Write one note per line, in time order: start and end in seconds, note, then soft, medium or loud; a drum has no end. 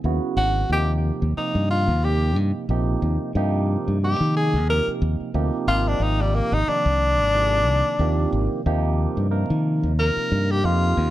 0.04 0.18 D#2 medium
0.04 0.65 C#3 medium
0.04 0.65 F#3 medium
0.04 0.66 B3 medium
0.04 0.65 E4 medium
0.04 0.66 F#4 medium
0.37 0.63 G#1 medium
0.37 0.69 F#4 loud
0.69 1.10 D#2 medium
0.69 1.32 C3 medium
0.69 1.32 F3 medium
0.69 1.32 A#3 medium
0.69 1.32 D#4 medium
0.69 1.32 G4 medium
0.69 0.92 G4 medium
1.22 1.34 D#2 medium
1.37 1.98 C3 medium
1.37 1.98 F3 medium
1.37 1.98 A#3 medium
1.37 1.69 D#4 medium
1.37 1.98 D#4 medium
1.37 1.98 G4 medium
1.37 muted fingered electric bass stroke soft
1.55 1.89 G2 medium
1.70 2.06 F4 medium
1.88 2.36 D#2 medium
2.04 2.65 C3 medium
2.04 2.65 F3 medium
2.04 2.65 A#3 medium
2.04 2.65 D#4 medium
2.04 2.37 G4 medium
2.04 2.65 G4 medium
2.36 2.51 G2 medium
2.69 2.95 A#1 medium
2.69 3.31 C3 medium
2.69 3.31 F3 medium
2.69 3.31 A#3 medium
2.69 3.31 D#4 medium
2.69 3.31 G4 medium
3.02 3.17 D#2 medium
3.35 3.75 G2 loud
3.35 3.97 C3 loud
3.35 3.97 F3 medium
3.35 3.97 A#3 medium
3.35 3.97 D#4 medium
3.35 3.97 G4 loud
3.88 4.13 G2 medium
4.03 4.63 C3 medium
4.03 4.63 F3 medium
4.03 4.64 A#3 medium
4.03 4.64 D#4 medium
4.03 4.64 G4 medium
4.03 4.34 G4 medium
4.20 4.55 D#3 medium
4.36 4.67 G#4 medium
4.54 4.79 D#2 medium
4.69 5.29 C3 medium
4.69 5.29 F3 medium
4.69 5.29 A#3 medium
4.69 5.29 D#4 medium
4.69 5.30 G4 medium
4.69 4.90 A#4 loud
4.88 muted fingered electric bass stroke soft
5.02 5.16 D#2 medium
5.20 muted fingered electric bass stroke soft
5.34 5.49 D2 medium
5.34 5.66 C3 medium
5.34 5.67 F3 medium
5.34 5.67 A#3 medium
5.34 5.67 D#4 medium
5.34 5.67 G4 loud
5.67 5.93 G#1 medium
5.67 6.58 C3 medium
5.67 6.59 F3 medium
5.67 6.59 A#3 medium
5.67 6.59 D#4 medium
5.67 5.90 F4 loud
5.67 6.59 G4 medium
5.88 6.04 D4 medium
6.00 6.40 G#1 medium
6.00 6.23 D#4 loud
6.21 6.37 G3 medium
6.35 6.55 A#3 loud
6.52 6.64 G#1 medium
6.52 6.70 D#4 medium
6.67 7.28 C3 medium
6.67 7.28 D#3 medium
6.67 7.28 F3 medium
6.67 7.28 A#3 medium
6.67 8.67 D4 loud
6.67 7.28 G4 medium
6.67 muted fingered electric bass stroke soft
6.86 7.20 C2 medium
7.20 7.67 G#1 medium
7.34 7.94 C3 medium
7.34 7.94 D#3 medium
7.34 7.94 F3 medium
7.34 7.95 A#3 medium
7.34 7.95 G#4 medium
7.67 7.81 C2 loud
7.99 8.25 D#2 medium
7.99 8.60 C3 medium
7.99 8.60 D#3 medium
7.99 8.60 F3 medium
7.99 8.61 A#3 medium
7.99 8.61 G4 loud
8.32 8.47 G#1 medium
8.66 9.06 D#2 loud
8.66 9.26 C3 loud
8.66 9.26 F3 loud
8.66 9.26 A#3 loud
8.66 9.26 D#4 medium
8.66 9.27 G4 loud
9.17 9.43 G2 medium
9.31 9.92 C3 medium
9.31 9.92 F3 medium
9.31 9.92 A#3 medium
9.31 9.92 D#4 medium
9.31 9.92 A#4 medium
9.50 9.85 D#3 medium
9.83 10.09 D#2 medium
9.98 10.58 C3 medium
9.98 10.58 F3 medium
9.98 10.59 A#3 medium
9.98 10.59 D#4 medium
9.98 10.59 A#4 medium
9.98 10.52 A#4 medium
10.17 muted fingered electric bass stroke soft
10.32 10.61 G2 medium
10.51 10.67 G4 medium
10.64 10.94 F2 medium
10.64 11.10 C3 medium
10.64 11.10 F3 medium
10.64 11.10 A#3 medium
10.64 11.10 D#4 medium
10.64 11.10 F4 loud
10.64 11.10 G4 medium
10.97 11.10 D#2 medium